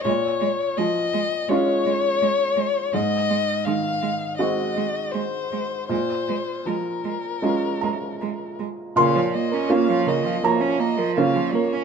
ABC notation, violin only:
X:1
M:4/4
L:1/8
Q:1/4=82
K:Bbm
V:1 name="Violin"
d2 e2 d4 | e2 f2 e2 c2 | c2 B4- B z | f e f e d e f d |]